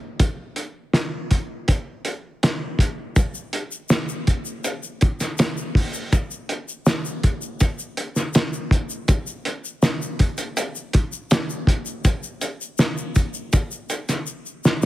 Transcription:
0.20 kick, closed hi-hat
0.56 closed hi-hat
0.93 snare, closed hi-hat
1.31 kick, closed hi-hat
1.68 kick, closed hi-hat
2.05 closed hi-hat
2.43 snare, closed hi-hat
2.79 kick, closed hi-hat
3.16 kick, closed hi-hat, shaker
3.35 shaker
3.53 closed hi-hat
3.72 shaker
3.89 snare, closed hi-hat, shaker
4.09 shaker
4.27 kick, closed hi-hat
4.45 shaker
4.64 closed hi-hat, shaker
4.83 shaker
5.01 kick, closed hi-hat
5.20 snare, closed hi-hat, shaker
5.38 snare, closed hi-hat, shaker
5.57 shaker
5.75 kick, open hi-hat
5.94 shaker
6.13 kick, closed hi-hat, shaker
6.31 shaker
6.49 closed hi-hat
6.69 shaker
6.86 snare, closed hi-hat, shaker
7.05 shaker
7.23 kick, closed hi-hat
7.42 shaker
7.60 kick, closed hi-hat, shaker
7.79 shaker
7.97 closed hi-hat
8.16 snare, shaker
8.34 snare, closed hi-hat, shaker
8.53 shaker
8.71 kick, closed hi-hat
8.90 shaker
9.08 kick, closed hi-hat, shaker
9.27 shaker
9.45 closed hi-hat
9.65 shaker
9.83 snare, closed hi-hat, shaker
10.02 shaker
10.19 kick, closed hi-hat
10.38 closed hi-hat, shaker
10.57 closed hi-hat, shaker
10.75 shaker
10.93 kick, closed hi-hat
11.12 shaker
11.31 snare, closed hi-hat, shaker
11.50 shaker
11.67 kick, closed hi-hat
11.86 shaker
12.05 kick, closed hi-hat, shaker
12.23 shaker
12.41 closed hi-hat, shaker
12.61 shaker
12.78 snare, closed hi-hat, shaker
12.98 shaker
13.15 kick, closed hi-hat, shaker
13.34 shaker
13.53 kick, closed hi-hat, shaker
13.71 shaker
13.90 closed hi-hat, shaker
14.09 snare, closed hi-hat, shaker
14.27 shaker
14.46 shaker
14.64 snare, shaker

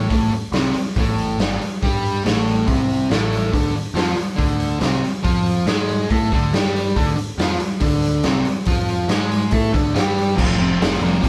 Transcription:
Already playing: A3
0.10 A1 A2 A3, kick, open hi-hat
0.31 muted picked electric bass stroke, muted distorted electric guitar stroke, open hi-hat
0.52 C2 C3 C4, snare, open hi-hat
0.74 muted distorted electric guitar stroke, muted picked electric bass stroke, open hi-hat
0.96 A1 A2 A3, kick, open hi-hat
1.18 open hi-hat
1.38 G1 G2 G3, snare, open hi-hat
1.61 open hi-hat
1.82 G2 G3 G4, kick, open hi-hat
2.05 open hi-hat
2.24 A1 A2 A3, snare, open hi-hat
2.48 open hi-hat
2.67 C2 C3 C4, kick, open hi-hat
2.90 open hi-hat
3.10 A1 A2 A3, snare, open hi-hat
3.32 open hi-hat
3.53 D2 D3 D4, kick, open hi-hat
3.74 muted picked electric bass stroke, muted distorted electric guitar stroke, open hi-hat
3.94 F2 F3 F4, snare, open hi-hat
4.16 muted picked electric bass stroke, muted distorted electric guitar stroke, open hi-hat
4.36 D2 D3 D4, kick, open hi-hat
4.60 open hi-hat
4.80 C2 C3 C4, snare, open hi-hat
5.04 open hi-hat
5.23 F2 F3 F4, kick, open hi-hat
5.46 open hi-hat
5.66 G#2 G#3 G#4, snare, open hi-hat
5.89 open hi-hat
6.10 A2 A3 A4, kick, open hi-hat
6.31 D2 D3 D4, kick, open hi-hat
6.52 G2 G3 G4, snare, open hi-hat
6.76 open hi-hat
6.96 D2 D3 D4, kick, open hi-hat
7.17 muted distorted electric guitar stroke, muted picked electric bass stroke, open hi-hat
7.38 F2 F3 F4, snare, open hi-hat
7.60 muted distorted electric guitar stroke, muted picked electric bass stroke, open hi-hat
7.80 D2 D3 D4, kick, open hi-hat
8.02 open hi-hat
8.23 C2 C3 C4, snare, open hi-hat
8.45 open hi-hat
8.65 F2 F3 F4, kick, open hi-hat
8.88 open hi-hat
9.08 G#2 G#3 G#4, snare, open hi-hat
9.31 open hi-hat
9.51 A2 A3 A4, kick, open hi-hat
9.72 D2 D3 D4, kick, open hi-hat
9.93 G2 G3 G4, snare, open hi-hat
10.18 open hi-hat
10.35 F1 F2 C3 F3 G4, kick, crash
10.39 E5
10.55 F1 F2 C3 F3
10.61 G4 E5
10.78 F1 F2 C3 F3 G4, open hi-hat
10.82 E5, snare
10.99 F1 F2 C3 F3 F4
11.04 D5
11.20 F2 C3 F3, kick
11.24 F1 F4 D5, open hi-hat

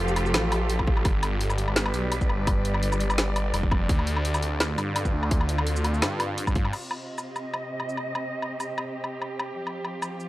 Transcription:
Already playing: F1 F3 F4 G4 A4
0.08 shaker
0.16 closed hi-hat, low woodblock
0.26 shaker
0.34 A1, snare, closed hi-hat, low woodblock
0.52 closed hi-hat, low woodblock
0.70 closed hi-hat
0.79 kick, low woodblock
0.87 kick
0.97 low woodblock
1.05 G1 G3, kick, closed hi-hat, low woodblock
1.23 closed hi-hat, low woodblock
1.41 closed hi-hat
1.45 B4
1.50 low woodblock, shaker
1.58 D5, closed hi-hat
1.68 low woodblock
1.76 snare, closed hi-hat
1.86 low woodblock
1.94 B1, closed hi-hat, shaker
2.12 closed hi-hat, low woodblock
2.21 kick, shaker
2.29 G1, low woodblock
2.47 kick, closed hi-hat, low woodblock
2.65 closed hi-hat
2.74 low woodblock
2.83 closed hi-hat
2.92 low woodblock, shaker
3.00 closed hi-hat
3.10 low woodblock, shaker
3.18 snare, closed hi-hat
3.36 closed hi-hat, low woodblock
3.54 F1, closed hi-hat, low woodblock
3.63 kick
3.71 kick, low woodblock
3.89 D2 D3, kick, closed hi-hat
3.99 low woodblock
4.07 closed hi-hat
4.14 C4, low woodblock
4.25 closed hi-hat
4.34 F4, low woodblock, shaker
4.43 closed hi-hat
4.60 snare, closed hi-hat, low woodblock
4.78 G2, closed hi-hat, low woodblock, shaker
4.96 closed hi-hat, low woodblock
5.05 kick, shaker
5.13 D2
5.23 low woodblock
5.31 kick, closed hi-hat
5.41 low woodblock
5.49 closed hi-hat
5.58 low woodblock
5.67 closed hi-hat
5.76 shaker
5.84 closed hi-hat, low woodblock
5.94 shaker
6.02 G2, snare, closed hi-hat, low woodblock
6.20 closed hi-hat, low woodblock
6.38 closed hi-hat
6.47 kick, low woodblock, shaker
6.55 kick, closed hi-hat
6.65 low woodblock
6.73 C3, crash, low woodblock
6.87 D#5, low woodblock
7.18 low woodblock, shaker
7.29 G4
7.36 low woodblock, shaker
7.54 low woodblock
7.80 low woodblock
7.89 shaker
7.97 low woodblock
8.15 low woodblock
8.42 low woodblock
8.60 low woodblock, shaker
8.78 low woodblock
9.04 low woodblock
9.22 low woodblock
9.39 low woodblock
9.57 F3
9.67 low woodblock
9.85 low woodblock
10.02 low woodblock, shaker
10.20 A4, shaker

